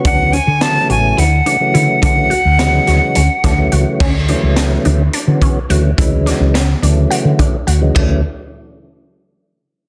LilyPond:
<<
  \new Staff \with { instrumentName = "Flute" } { \time 7/8 \key d \lydian \tempo 4 = 106 fis''8 gis''8 a''8 gis''8 fis''4. | fis''2. r8 | r2. r8 | r2. r8 |
r2. r8 | }
  \new Staff \with { instrumentName = "Synth arpeggio sound" } { \time 7/8 \key d \lydian d'8 cis'8 d'8 fis'8 e'8 d'8 e'8 | d'8 fis'8 fis'8 fis'8 cis'8 d'8 fis'8 | cis'8 d'8 d'8 d'8 d'8 cis'8 fis'8 | e'8 d'8 cis'8 d'8 fis'8 d'8 fis'8 |
d'8 r2. | }
  \new Staff \with { instrumentName = "Tonewheel organ" } { \clef bass \time 7/8 \key d \lydian <cis e fis b>8 r8 <cis e fis a>4 r8 <cis e fis a>16 <cis e fis a>8.~ | <cis e fis a>8 r8 <cis e fis gis>4 r8 <cis e fis a>16 <cis e fis a>8. | r8 <cis e fis a>4~ <cis e fis a>16 r8 <cis e fis b>8 r16 <cis e fis a>16 r16 | <cis e fis gis>4 r8 <cis e fis a>4~ <cis e fis a>16 r8 <cis e fis gis>16 |
<cis e fis a>8 r2. | }
  \new Staff \with { instrumentName = "Fretless electric bass" } { \clef bass \time 7/8 \key d \lydian d,8. d8. a,,8 d,8 r8 d16 r16 | d8 r16 d,8. d,16 r16 d,16 r16 d,8 cis,16 r16 | d,8. cis,8. d,8 r16 d8 r16 d,8 | d,8. cis,8. d,8 r16 d8 r16 d,8 |
d,8 r2. | }
  \new DrumStaff \with { instrumentName = "Drums" } \drummode { \time 7/8 <hh bd>8 hh8 <hh sn>8 hh8 hh8 hh8 hh8 | <hh bd>8 hh8 <hh sn>8 <hh sn>8 hh8 <hh bd sn>8 hh8 | <cymc bd>8 hh8 <hh sn>8 hh8 hh8 <hh bd>8 hh8 | <hh bd>8 <hh sn>8 <hh sn>8 hh8 hh8 <hh bd>8 hh8 |
<bd rb>4 r4 r4. | }
>>